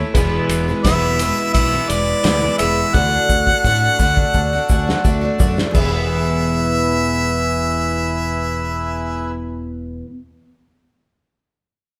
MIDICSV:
0, 0, Header, 1, 7, 480
1, 0, Start_track
1, 0, Tempo, 701098
1, 100, Time_signature, 4, 2, 24, 8
1, 8210, End_track
2, 0, Start_track
2, 0, Title_t, "Harmonica"
2, 0, Program_c, 0, 22
2, 572, Note_on_c, 0, 76, 99
2, 1029, Note_off_c, 0, 76, 0
2, 1050, Note_on_c, 0, 76, 108
2, 1294, Note_on_c, 0, 74, 102
2, 1304, Note_off_c, 0, 76, 0
2, 1764, Note_off_c, 0, 74, 0
2, 1768, Note_on_c, 0, 76, 107
2, 2016, Note_on_c, 0, 78, 116
2, 2026, Note_off_c, 0, 76, 0
2, 3458, Note_off_c, 0, 78, 0
2, 3930, Note_on_c, 0, 76, 89
2, 6376, Note_off_c, 0, 76, 0
2, 8210, End_track
3, 0, Start_track
3, 0, Title_t, "Reed electric piano"
3, 0, Program_c, 1, 4
3, 95, Note_on_c, 1, 71, 103
3, 96, Note_on_c, 1, 64, 103
3, 96, Note_on_c, 1, 68, 91
3, 797, Note_off_c, 1, 64, 0
3, 797, Note_off_c, 1, 71, 0
3, 798, Note_off_c, 1, 68, 0
3, 1776, Note_on_c, 1, 64, 80
3, 1777, Note_on_c, 1, 68, 74
3, 1778, Note_on_c, 1, 71, 82
3, 1953, Note_off_c, 1, 64, 0
3, 1954, Note_off_c, 1, 68, 0
3, 1954, Note_off_c, 1, 71, 0
3, 2013, Note_on_c, 1, 74, 96
3, 2014, Note_on_c, 1, 69, 74
3, 2016, Note_on_c, 1, 66, 81
3, 2716, Note_off_c, 1, 74, 0
3, 2717, Note_off_c, 1, 69, 0
3, 2718, Note_off_c, 1, 66, 0
3, 2731, Note_on_c, 1, 83, 73
3, 2958, Note_off_c, 1, 83, 0
3, 2978, Note_on_c, 1, 81, 78
3, 3203, Note_off_c, 1, 81, 0
3, 3228, Note_on_c, 1, 80, 70
3, 3336, Note_off_c, 1, 80, 0
3, 3341, Note_on_c, 1, 78, 65
3, 3452, Note_off_c, 1, 78, 0
3, 3460, Note_on_c, 1, 76, 71
3, 3683, Note_off_c, 1, 76, 0
3, 3699, Note_on_c, 1, 69, 86
3, 3699, Note_on_c, 1, 74, 98
3, 3700, Note_on_c, 1, 66, 89
3, 3875, Note_off_c, 1, 66, 0
3, 3875, Note_off_c, 1, 69, 0
3, 3924, Note_off_c, 1, 74, 0
3, 3925, Note_on_c, 1, 68, 85
3, 3939, Note_on_c, 1, 71, 71
3, 3955, Note_on_c, 1, 76, 102
3, 6853, Note_off_c, 1, 68, 0
3, 6860, Note_off_c, 1, 71, 0
3, 6868, Note_off_c, 1, 76, 0
3, 8210, End_track
4, 0, Start_track
4, 0, Title_t, "Accordion"
4, 0, Program_c, 2, 21
4, 0, Note_on_c, 2, 64, 79
4, 0, Note_on_c, 2, 69, 88
4, 0, Note_on_c, 2, 73, 84
4, 0, Note_on_c, 2, 76, 84
4, 81, Note_off_c, 2, 64, 0
4, 82, Note_off_c, 2, 69, 0
4, 82, Note_off_c, 2, 76, 0
4, 83, Note_off_c, 2, 73, 0
4, 100, Note_on_c, 2, 76, 85
4, 101, Note_on_c, 2, 71, 82
4, 102, Note_on_c, 2, 64, 86
4, 104, Note_on_c, 2, 68, 80
4, 2001, Note_off_c, 2, 71, 0
4, 2001, Note_off_c, 2, 76, 0
4, 2002, Note_off_c, 2, 64, 0
4, 2003, Note_off_c, 2, 68, 0
4, 2004, Note_on_c, 2, 62, 78
4, 2009, Note_on_c, 2, 69, 83
4, 2009, Note_on_c, 2, 74, 82
4, 2013, Note_on_c, 2, 66, 83
4, 3913, Note_off_c, 2, 62, 0
4, 3915, Note_off_c, 2, 74, 0
4, 3916, Note_off_c, 2, 69, 0
4, 3918, Note_off_c, 2, 66, 0
4, 3931, Note_on_c, 2, 71, 81
4, 3933, Note_on_c, 2, 76, 84
4, 3934, Note_on_c, 2, 68, 87
4, 3936, Note_on_c, 2, 64, 81
4, 6380, Note_off_c, 2, 71, 0
4, 6380, Note_off_c, 2, 76, 0
4, 6381, Note_off_c, 2, 68, 0
4, 6382, Note_off_c, 2, 64, 0
4, 8210, End_track
5, 0, Start_track
5, 0, Title_t, "Twelve-string acoustic guitar"
5, 0, Program_c, 3, 25
5, 0, Note_on_c, 3, 57, 75
5, 0, Note_on_c, 3, 61, 74
5, 0, Note_on_c, 3, 64, 90
5, 102, Note_off_c, 3, 57, 0
5, 104, Note_on_c, 3, 40, 97
5, 108, Note_off_c, 3, 61, 0
5, 109, Note_on_c, 3, 52, 99
5, 111, Note_off_c, 3, 64, 0
5, 111, Note_on_c, 3, 47, 106
5, 116, Note_on_c, 3, 56, 92
5, 117, Note_on_c, 3, 59, 110
5, 121, Note_on_c, 3, 64, 97
5, 457, Note_off_c, 3, 64, 0
5, 462, Note_off_c, 3, 40, 0
5, 465, Note_off_c, 3, 47, 0
5, 465, Note_off_c, 3, 52, 0
5, 465, Note_on_c, 3, 64, 60
5, 467, Note_off_c, 3, 59, 0
5, 468, Note_off_c, 3, 56, 0
5, 475, Note_on_c, 3, 59, 54
5, 483, Note_on_c, 3, 56, 53
5, 485, Note_on_c, 3, 52, 47
5, 583, Note_off_c, 3, 64, 0
5, 588, Note_off_c, 3, 52, 0
5, 588, Note_off_c, 3, 59, 0
5, 590, Note_on_c, 3, 40, 75
5, 592, Note_off_c, 3, 56, 0
5, 592, Note_on_c, 3, 47, 85
5, 597, Note_on_c, 3, 52, 88
5, 599, Note_on_c, 3, 56, 76
5, 600, Note_on_c, 3, 59, 93
5, 605, Note_on_c, 3, 64, 92
5, 813, Note_off_c, 3, 52, 0
5, 821, Note_on_c, 3, 52, 63
5, 822, Note_off_c, 3, 56, 0
5, 825, Note_off_c, 3, 40, 0
5, 825, Note_off_c, 3, 59, 0
5, 826, Note_off_c, 3, 47, 0
5, 830, Note_on_c, 3, 56, 76
5, 833, Note_off_c, 3, 64, 0
5, 833, Note_on_c, 3, 59, 62
5, 843, Note_on_c, 3, 64, 75
5, 1167, Note_off_c, 3, 64, 0
5, 1175, Note_on_c, 3, 64, 58
5, 1176, Note_off_c, 3, 59, 0
5, 1181, Note_off_c, 3, 52, 0
5, 1182, Note_off_c, 3, 56, 0
5, 1184, Note_on_c, 3, 59, 50
5, 1190, Note_on_c, 3, 56, 45
5, 1198, Note_on_c, 3, 52, 49
5, 1282, Note_off_c, 3, 52, 0
5, 1286, Note_off_c, 3, 56, 0
5, 1291, Note_on_c, 3, 52, 64
5, 1294, Note_on_c, 3, 56, 66
5, 1297, Note_off_c, 3, 59, 0
5, 1298, Note_off_c, 3, 64, 0
5, 1305, Note_on_c, 3, 59, 60
5, 1312, Note_on_c, 3, 64, 75
5, 1525, Note_off_c, 3, 52, 0
5, 1529, Note_on_c, 3, 40, 91
5, 1532, Note_off_c, 3, 56, 0
5, 1533, Note_on_c, 3, 47, 75
5, 1533, Note_on_c, 3, 52, 83
5, 1536, Note_off_c, 3, 59, 0
5, 1538, Note_off_c, 3, 64, 0
5, 1540, Note_on_c, 3, 56, 87
5, 1545, Note_on_c, 3, 59, 88
5, 1546, Note_on_c, 3, 64, 93
5, 1644, Note_off_c, 3, 64, 0
5, 1652, Note_off_c, 3, 59, 0
5, 1652, Note_on_c, 3, 64, 64
5, 1655, Note_off_c, 3, 40, 0
5, 1656, Note_off_c, 3, 47, 0
5, 1657, Note_off_c, 3, 52, 0
5, 1660, Note_off_c, 3, 56, 0
5, 1660, Note_on_c, 3, 59, 53
5, 1669, Note_on_c, 3, 56, 49
5, 1676, Note_on_c, 3, 52, 48
5, 1772, Note_off_c, 3, 52, 0
5, 1776, Note_off_c, 3, 64, 0
5, 1778, Note_off_c, 3, 56, 0
5, 1780, Note_off_c, 3, 59, 0
5, 1780, Note_on_c, 3, 52, 62
5, 1787, Note_on_c, 3, 56, 65
5, 1797, Note_on_c, 3, 59, 66
5, 1807, Note_on_c, 3, 64, 72
5, 2014, Note_off_c, 3, 52, 0
5, 2017, Note_on_c, 3, 50, 82
5, 2023, Note_off_c, 3, 56, 0
5, 2027, Note_off_c, 3, 59, 0
5, 2028, Note_on_c, 3, 57, 80
5, 2030, Note_on_c, 3, 62, 82
5, 2034, Note_off_c, 3, 64, 0
5, 2037, Note_on_c, 3, 66, 90
5, 2366, Note_off_c, 3, 66, 0
5, 2374, Note_on_c, 3, 66, 58
5, 2379, Note_off_c, 3, 50, 0
5, 2379, Note_off_c, 3, 62, 0
5, 2384, Note_off_c, 3, 57, 0
5, 2387, Note_on_c, 3, 62, 54
5, 2398, Note_on_c, 3, 57, 45
5, 2489, Note_off_c, 3, 57, 0
5, 2494, Note_on_c, 3, 50, 84
5, 2497, Note_off_c, 3, 66, 0
5, 2497, Note_on_c, 3, 57, 82
5, 2500, Note_off_c, 3, 62, 0
5, 2508, Note_on_c, 3, 62, 83
5, 2510, Note_on_c, 3, 66, 97
5, 2724, Note_off_c, 3, 50, 0
5, 2733, Note_on_c, 3, 50, 77
5, 2734, Note_off_c, 3, 57, 0
5, 2737, Note_off_c, 3, 62, 0
5, 2742, Note_on_c, 3, 57, 74
5, 2745, Note_off_c, 3, 66, 0
5, 2746, Note_on_c, 3, 62, 68
5, 2756, Note_on_c, 3, 66, 85
5, 3093, Note_off_c, 3, 66, 0
5, 3097, Note_off_c, 3, 50, 0
5, 3101, Note_off_c, 3, 57, 0
5, 3101, Note_on_c, 3, 66, 58
5, 3103, Note_off_c, 3, 62, 0
5, 3112, Note_on_c, 3, 62, 51
5, 3125, Note_on_c, 3, 57, 51
5, 3212, Note_on_c, 3, 50, 66
5, 3213, Note_off_c, 3, 57, 0
5, 3218, Note_off_c, 3, 62, 0
5, 3221, Note_off_c, 3, 66, 0
5, 3221, Note_on_c, 3, 57, 67
5, 3226, Note_on_c, 3, 62, 71
5, 3235, Note_on_c, 3, 66, 78
5, 3328, Note_off_c, 3, 66, 0
5, 3336, Note_off_c, 3, 50, 0
5, 3336, Note_on_c, 3, 66, 56
5, 3340, Note_off_c, 3, 62, 0
5, 3341, Note_off_c, 3, 57, 0
5, 3348, Note_on_c, 3, 62, 52
5, 3352, Note_on_c, 3, 57, 45
5, 3448, Note_off_c, 3, 57, 0
5, 3451, Note_off_c, 3, 62, 0
5, 3452, Note_on_c, 3, 50, 84
5, 3456, Note_off_c, 3, 66, 0
5, 3456, Note_on_c, 3, 57, 93
5, 3459, Note_on_c, 3, 62, 89
5, 3464, Note_on_c, 3, 66, 86
5, 3560, Note_off_c, 3, 66, 0
5, 3568, Note_on_c, 3, 66, 67
5, 3573, Note_off_c, 3, 62, 0
5, 3576, Note_off_c, 3, 50, 0
5, 3578, Note_off_c, 3, 57, 0
5, 3581, Note_on_c, 3, 62, 63
5, 3594, Note_on_c, 3, 57, 52
5, 3683, Note_off_c, 3, 57, 0
5, 3685, Note_on_c, 3, 50, 68
5, 3691, Note_on_c, 3, 57, 69
5, 3694, Note_off_c, 3, 66, 0
5, 3695, Note_off_c, 3, 62, 0
5, 3703, Note_on_c, 3, 62, 82
5, 3707, Note_on_c, 3, 66, 77
5, 3908, Note_on_c, 3, 40, 77
5, 3933, Note_off_c, 3, 50, 0
5, 3936, Note_off_c, 3, 57, 0
5, 3938, Note_on_c, 3, 47, 87
5, 3942, Note_off_c, 3, 62, 0
5, 3944, Note_off_c, 3, 66, 0
5, 3961, Note_on_c, 3, 52, 87
5, 3983, Note_on_c, 3, 56, 86
5, 4006, Note_on_c, 3, 59, 95
5, 4031, Note_on_c, 3, 64, 98
5, 6872, Note_off_c, 3, 40, 0
5, 6887, Note_off_c, 3, 47, 0
5, 6899, Note_off_c, 3, 52, 0
5, 6909, Note_off_c, 3, 56, 0
5, 6921, Note_off_c, 3, 59, 0
5, 6933, Note_off_c, 3, 64, 0
5, 8210, End_track
6, 0, Start_track
6, 0, Title_t, "Fingered electric bass"
6, 0, Program_c, 4, 33
6, 99, Note_on_c, 4, 28, 101
6, 254, Note_off_c, 4, 28, 0
6, 337, Note_on_c, 4, 28, 90
6, 493, Note_off_c, 4, 28, 0
6, 581, Note_on_c, 4, 28, 75
6, 891, Note_off_c, 4, 28, 0
6, 1061, Note_on_c, 4, 35, 100
6, 1216, Note_off_c, 4, 35, 0
6, 1301, Note_on_c, 4, 28, 98
6, 1456, Note_off_c, 4, 28, 0
6, 1537, Note_on_c, 4, 38, 101
6, 1693, Note_off_c, 4, 38, 0
6, 1780, Note_on_c, 4, 28, 90
6, 1935, Note_off_c, 4, 28, 0
6, 2017, Note_on_c, 4, 38, 102
6, 2173, Note_off_c, 4, 38, 0
6, 2254, Note_on_c, 4, 38, 82
6, 2411, Note_off_c, 4, 38, 0
6, 2494, Note_on_c, 4, 45, 86
6, 2651, Note_off_c, 4, 45, 0
6, 2733, Note_on_c, 4, 38, 91
6, 2891, Note_off_c, 4, 38, 0
6, 2978, Note_on_c, 4, 38, 90
6, 3134, Note_off_c, 4, 38, 0
6, 3217, Note_on_c, 4, 38, 92
6, 3373, Note_off_c, 4, 38, 0
6, 3454, Note_on_c, 4, 38, 85
6, 3611, Note_off_c, 4, 38, 0
6, 3697, Note_on_c, 4, 42, 97
6, 3853, Note_off_c, 4, 42, 0
6, 3938, Note_on_c, 4, 28, 107
6, 6859, Note_off_c, 4, 28, 0
6, 8210, End_track
7, 0, Start_track
7, 0, Title_t, "Drums"
7, 101, Note_on_c, 9, 51, 106
7, 102, Note_on_c, 9, 36, 116
7, 108, Note_on_c, 9, 82, 92
7, 169, Note_off_c, 9, 51, 0
7, 170, Note_off_c, 9, 36, 0
7, 177, Note_off_c, 9, 82, 0
7, 338, Note_on_c, 9, 51, 82
7, 346, Note_on_c, 9, 82, 114
7, 407, Note_off_c, 9, 51, 0
7, 414, Note_off_c, 9, 82, 0
7, 469, Note_on_c, 9, 82, 32
7, 538, Note_off_c, 9, 82, 0
7, 578, Note_on_c, 9, 51, 107
7, 580, Note_on_c, 9, 36, 85
7, 586, Note_on_c, 9, 38, 118
7, 586, Note_on_c, 9, 82, 92
7, 647, Note_off_c, 9, 51, 0
7, 648, Note_off_c, 9, 36, 0
7, 654, Note_off_c, 9, 38, 0
7, 655, Note_off_c, 9, 82, 0
7, 817, Note_on_c, 9, 51, 87
7, 818, Note_on_c, 9, 82, 108
7, 885, Note_off_c, 9, 51, 0
7, 886, Note_off_c, 9, 82, 0
7, 938, Note_on_c, 9, 82, 27
7, 1006, Note_off_c, 9, 82, 0
7, 1057, Note_on_c, 9, 51, 108
7, 1059, Note_on_c, 9, 36, 87
7, 1060, Note_on_c, 9, 82, 77
7, 1126, Note_off_c, 9, 51, 0
7, 1127, Note_off_c, 9, 36, 0
7, 1128, Note_off_c, 9, 82, 0
7, 1298, Note_on_c, 9, 51, 71
7, 1300, Note_on_c, 9, 82, 101
7, 1366, Note_off_c, 9, 51, 0
7, 1369, Note_off_c, 9, 82, 0
7, 1417, Note_on_c, 9, 82, 26
7, 1486, Note_off_c, 9, 82, 0
7, 1533, Note_on_c, 9, 51, 101
7, 1534, Note_on_c, 9, 82, 70
7, 1540, Note_on_c, 9, 38, 115
7, 1601, Note_off_c, 9, 51, 0
7, 1603, Note_off_c, 9, 82, 0
7, 1609, Note_off_c, 9, 38, 0
7, 1771, Note_on_c, 9, 82, 95
7, 1774, Note_on_c, 9, 51, 73
7, 1839, Note_off_c, 9, 82, 0
7, 1842, Note_off_c, 9, 51, 0
7, 2013, Note_on_c, 9, 82, 66
7, 2016, Note_on_c, 9, 36, 113
7, 2081, Note_off_c, 9, 82, 0
7, 2084, Note_off_c, 9, 36, 0
7, 2256, Note_on_c, 9, 36, 72
7, 2256, Note_on_c, 9, 82, 103
7, 2324, Note_off_c, 9, 36, 0
7, 2324, Note_off_c, 9, 82, 0
7, 2374, Note_on_c, 9, 36, 58
7, 2443, Note_off_c, 9, 36, 0
7, 2495, Note_on_c, 9, 36, 80
7, 2498, Note_on_c, 9, 82, 81
7, 2564, Note_off_c, 9, 36, 0
7, 2567, Note_off_c, 9, 82, 0
7, 2732, Note_on_c, 9, 82, 93
7, 2736, Note_on_c, 9, 36, 85
7, 2800, Note_off_c, 9, 82, 0
7, 2805, Note_off_c, 9, 36, 0
7, 2856, Note_on_c, 9, 36, 78
7, 2924, Note_off_c, 9, 36, 0
7, 2968, Note_on_c, 9, 82, 64
7, 2975, Note_on_c, 9, 36, 91
7, 3036, Note_off_c, 9, 82, 0
7, 3043, Note_off_c, 9, 36, 0
7, 3210, Note_on_c, 9, 82, 88
7, 3216, Note_on_c, 9, 36, 89
7, 3278, Note_off_c, 9, 82, 0
7, 3284, Note_off_c, 9, 36, 0
7, 3348, Note_on_c, 9, 38, 83
7, 3416, Note_off_c, 9, 38, 0
7, 3456, Note_on_c, 9, 36, 102
7, 3456, Note_on_c, 9, 82, 72
7, 3524, Note_off_c, 9, 82, 0
7, 3525, Note_off_c, 9, 36, 0
7, 3694, Note_on_c, 9, 82, 85
7, 3697, Note_on_c, 9, 36, 107
7, 3763, Note_off_c, 9, 82, 0
7, 3766, Note_off_c, 9, 36, 0
7, 3814, Note_on_c, 9, 82, 24
7, 3822, Note_on_c, 9, 38, 94
7, 3882, Note_off_c, 9, 82, 0
7, 3891, Note_off_c, 9, 38, 0
7, 3933, Note_on_c, 9, 82, 80
7, 3934, Note_on_c, 9, 49, 91
7, 3935, Note_on_c, 9, 36, 115
7, 4002, Note_off_c, 9, 49, 0
7, 4002, Note_off_c, 9, 82, 0
7, 4004, Note_off_c, 9, 36, 0
7, 8210, End_track
0, 0, End_of_file